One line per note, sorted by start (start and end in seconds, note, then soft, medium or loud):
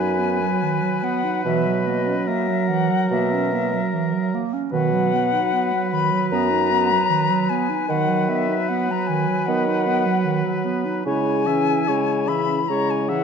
0.00 0.47 F#2 medium
0.00 1.41 F#3 medium
0.00 0.20 D#4 soft
0.00 2.30 B4 medium
0.00 1.05 G#5 medium
0.19 0.42 B3 soft
0.40 0.64 F#3 soft
0.62 0.84 D#3 soft
0.83 1.05 F#3 soft
1.04 1.26 B3 medium
1.04 1.45 F#5 medium
1.24 1.45 D#4 soft
1.45 2.14 B2 medium
1.45 1.67 E3 medium
1.45 4.42 F#3 medium
1.45 1.88 E5 medium
1.66 1.89 F#3 soft
1.86 2.08 A#3 soft
1.86 2.29 D#5 medium
2.07 2.29 C#4 soft
2.27 2.50 A#3 soft
2.27 4.46 A#4 medium
2.27 2.69 E5 medium
2.48 2.71 F#3 soft
2.67 2.92 E3 medium
2.67 3.09 F#5 medium
2.90 3.10 F#3 soft
3.10 3.79 B2 medium
3.10 3.34 A#3 medium
3.10 4.31 E5 medium
3.32 3.54 C#4 medium
3.53 3.75 A#3 soft
3.73 3.95 F#3 soft
3.93 4.15 E3 soft
4.14 4.35 F#3 medium
4.34 4.55 A#3 medium
4.54 4.72 C#4 soft
4.72 5.38 B2 medium
4.72 4.95 D#3 medium
4.72 7.85 F#3 medium
4.72 7.85 B4 medium
4.72 5.88 F#5 medium
4.93 5.15 F#3 medium
5.13 5.34 B3 soft
5.33 5.54 D#4 medium
5.53 5.74 B3 soft
5.73 5.94 F#3 soft
5.91 6.14 D#3 soft
5.91 6.30 B5 medium
6.12 6.32 F#3 soft
6.30 6.97 F#2 medium
6.30 6.52 B3 medium
6.30 7.51 A#5 medium
6.51 6.72 D#4 medium
6.71 6.93 B3 medium
6.91 7.12 F#3 medium
7.10 7.32 D#3 medium
7.30 7.52 F#3 medium
7.49 7.71 B3 medium
7.49 7.92 G#5 medium
7.70 7.89 D#4 medium
7.88 8.56 D#3 medium
7.88 8.10 D#3 medium
7.88 11.03 F#3 medium
7.88 11.02 B4 medium
7.88 8.30 F#5 medium
8.09 8.30 F#3 soft
8.29 8.50 B3 soft
8.29 8.70 E5 medium
8.49 8.71 D#4 soft
8.69 8.91 B3 medium
8.69 8.92 F#5 medium
8.90 9.11 F#3 soft
8.90 9.08 A#5 medium
9.07 9.30 D#3 medium
9.07 9.48 G#5 medium
9.28 9.47 F#3 soft
9.46 10.12 D#3 medium
9.46 9.69 B3 medium
9.46 10.65 F#5 medium
9.67 9.88 D#4 medium
9.87 10.07 B3 soft
10.05 10.26 F#3 medium
10.25 10.46 D#3 medium
10.45 10.67 F#3 medium
10.65 10.87 B3 medium
10.85 11.05 D#4 soft
11.05 11.79 C#3 medium
11.05 11.49 G#3 soft
11.05 11.48 E4 medium
11.05 11.48 C#5 soft
11.05 12.29 G#5 medium
11.47 11.91 E3 medium
11.47 11.90 C#4 soft
11.47 11.90 E5 soft
11.88 12.60 C#3 medium
11.88 12.30 G#3 soft
11.88 12.29 E4 soft
11.88 12.30 C#5 soft
12.28 12.69 E3 soft
12.28 12.57 C#4 soft
12.28 12.58 E5 soft
12.28 12.70 B5 medium
12.68 13.24 C#3 medium
12.68 13.12 G#3 soft
12.68 13.12 E4 medium
12.68 13.11 C#5 medium
12.68 12.92 A#5 medium
12.90 13.10 G#5 medium
13.08 13.24 E3 soft
13.08 13.24 C#4 soft
13.08 13.24 E5 soft
13.08 13.24 F#5 medium